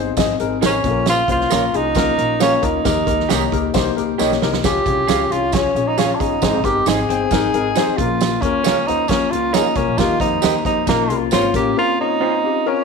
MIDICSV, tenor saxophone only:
0, 0, Header, 1, 2, 480
1, 0, Start_track
1, 0, Tempo, 445765
1, 1148, Time_signature, 4, 2, 24, 8
1, 13827, End_track
2, 0, Start_track
2, 0, Title_t, "Tenor saxophone"
2, 0, Program_c, 0, 66
2, 706, Note_on_c, 0, 61, 96
2, 1135, Note_off_c, 0, 61, 0
2, 1177, Note_on_c, 0, 65, 115
2, 1387, Note_off_c, 0, 65, 0
2, 1414, Note_on_c, 0, 65, 101
2, 1893, Note_on_c, 0, 63, 107
2, 1909, Note_off_c, 0, 65, 0
2, 2600, Note_off_c, 0, 63, 0
2, 2607, Note_on_c, 0, 61, 97
2, 2839, Note_on_c, 0, 63, 90
2, 2855, Note_off_c, 0, 61, 0
2, 4279, Note_off_c, 0, 63, 0
2, 5013, Note_on_c, 0, 67, 98
2, 5725, Note_on_c, 0, 65, 93
2, 5742, Note_off_c, 0, 67, 0
2, 5958, Note_on_c, 0, 61, 92
2, 5974, Note_off_c, 0, 65, 0
2, 6322, Note_on_c, 0, 63, 99
2, 6338, Note_off_c, 0, 61, 0
2, 6441, Note_on_c, 0, 61, 91
2, 6457, Note_off_c, 0, 63, 0
2, 6619, Note_on_c, 0, 62, 70
2, 6635, Note_off_c, 0, 61, 0
2, 6674, Note_on_c, 0, 63, 94
2, 6691, Note_off_c, 0, 62, 0
2, 7159, Note_on_c, 0, 67, 93
2, 7176, Note_off_c, 0, 63, 0
2, 7406, Note_on_c, 0, 68, 105
2, 7422, Note_off_c, 0, 67, 0
2, 8583, Note_on_c, 0, 65, 95
2, 8599, Note_off_c, 0, 68, 0
2, 9058, Note_on_c, 0, 61, 87
2, 9075, Note_off_c, 0, 65, 0
2, 9546, Note_on_c, 0, 63, 98
2, 9562, Note_off_c, 0, 61, 0
2, 9782, Note_on_c, 0, 61, 87
2, 9798, Note_off_c, 0, 63, 0
2, 10020, Note_on_c, 0, 65, 89
2, 10036, Note_off_c, 0, 61, 0
2, 10266, Note_on_c, 0, 63, 96
2, 10282, Note_off_c, 0, 65, 0
2, 10510, Note_on_c, 0, 61, 84
2, 10526, Note_off_c, 0, 63, 0
2, 10745, Note_on_c, 0, 65, 96
2, 10761, Note_off_c, 0, 61, 0
2, 10982, Note_off_c, 0, 65, 0
2, 10989, Note_on_c, 0, 63, 91
2, 11436, Note_off_c, 0, 63, 0
2, 11477, Note_on_c, 0, 63, 88
2, 11698, Note_off_c, 0, 63, 0
2, 11721, Note_on_c, 0, 58, 78
2, 12064, Note_off_c, 0, 58, 0
2, 12196, Note_on_c, 0, 65, 96
2, 12416, Note_off_c, 0, 65, 0
2, 12448, Note_on_c, 0, 67, 83
2, 12663, Note_off_c, 0, 67, 0
2, 12689, Note_on_c, 0, 65, 110
2, 12903, Note_off_c, 0, 65, 0
2, 12928, Note_on_c, 0, 63, 100
2, 13649, Note_on_c, 0, 61, 89
2, 13666, Note_off_c, 0, 63, 0
2, 13827, Note_off_c, 0, 61, 0
2, 13827, End_track
0, 0, End_of_file